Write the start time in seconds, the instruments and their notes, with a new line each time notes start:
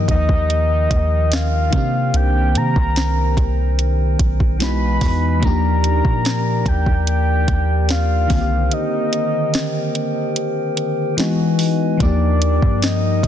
Already playing: pipe organ D#3 A#4 D#5 G5, fm electric piano F3 A#3 D#4 G4
0.08 808-style bass D#2, soft synth lead D#5, kick, closed hi-hat
0.29 kick
0.50 closed hi-hat
0.91 808-style bass D#2, kick, closed hi-hat
1.32 soft synth lead F5, snare, closed hi-hat
1.70 808-style bass C3, fm electric piano D#3 A#3 C4, pipe organ C5, kick, closed hi-hat
1.76 fm electric piano D4 G4
2.14 808-style bass C2, soft synth lead G5, closed hi-hat
2.55 808-style bass C3, soft synth lead A#5, closed hi-hat
2.76 808-style bass C2, kick
2.96 snare, closed hi-hat
3.37 808-style bass C2, kick, closed hi-hat
3.79 closed hi-hat
4.19 808-style bass B1, kick, closed hi-hat
4.40 kick
4.59 fm electric piano E3 G#3 B3 D#4 F#4, pipe organ E3 B4 D#5 G#5, soft synth lead B5, snare, closed hi-hat
5.01 808-style bass E2, kick, open hi-hat
5.40 808-style bass D#2, fm electric piano F3 A#3 D4, pipe organ G4 A#4 D5 G5, kick, closed hi-hat
5.45 fm electric piano D#4 G4, soft synth lead A#5
5.84 closed hi-hat
6.05 808-style bass A#2, kick
6.25 snare, closed hi-hat
6.66 808-style bass D#2, soft synth lead G5, kick, closed hi-hat
6.86 808-style bass D#2, kick
7.07 soft synth lead G5, closed hi-hat
7.48 808-style bass D#2, kick, closed hi-hat
7.89 soft synth lead F5, snare, closed hi-hat
8.27 808-style bass C2, fm electric piano D#3 A#3 C4, pipe organ A#4 C5, kick, open hi-hat
8.33 fm electric piano D3 F4
8.41 fm electric piano G4
8.71 soft synth lead D#5, closed hi-hat
9.13 closed hi-hat
9.54 snare, closed hi-hat
9.95 closed hi-hat
10.36 closed hi-hat
10.77 closed hi-hat
11.17 fm electric piano E3 G#3 B3 D#4 F#4, pipe organ E3 B4 D#5 G#5, snare, closed hi-hat
11.59 open hi-hat
11.97 808-style bass D#2, fm electric piano F3 A#3, pipe organ D#4 A#4 G5, kick, closed hi-hat
12.02 fm electric piano D#4 G4, soft synth lead D5
12.42 closed hi-hat
12.62 808-style bass G2, kick
12.82 soft synth lead D#5, snare, closed hi-hat
13.23 808-style bass D#2, kick, closed hi-hat